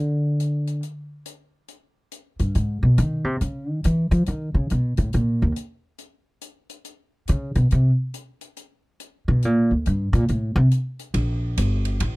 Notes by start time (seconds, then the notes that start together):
Already playing: D3
0.40 closed hi-hat
0.67 closed hi-hat
0.83 closed hi-hat
1.26 closed hi-hat
1.68 closed hi-hat
2.12 closed hi-hat
2.39 G2, closed hi-hat
2.55 G#2, closed hi-hat
2.83 B2
2.98 D#3, closed hi-hat
3.24 C3
3.41 C#3, closed hi-hat
3.69 D#3
3.84 E3, closed hi-hat
4.11 F3, closed hi-hat
4.26 D#3, closed hi-hat
4.54 C#3
4.70 B2, closed hi-hat
4.97 A2, closed hi-hat
5.13 A#2, closed hi-hat
5.42 D#2
5.56 closed hi-hat
5.98 closed hi-hat
6.41 closed hi-hat
6.69 closed hi-hat
6.85 closed hi-hat
7.28 C#3, closed hi-hat
7.55 B2, closed hi-hat
7.71 C3, closed hi-hat
8.14 closed hi-hat
8.41 closed hi-hat
8.57 closed hi-hat
9.00 closed hi-hat
9.28 B2
9.42 A#2, closed hi-hat
9.71 D2
9.86 G2, closed hi-hat
10.13 A#2, closed hi-hat
10.28 A2, closed hi-hat
10.56 C3
10.71 closed hi-hat
10.99 closed hi-hat
11.14 A#1, ride
11.57 G1, hi-hat pedal, ride
11.85 ride
12.00 A1, ride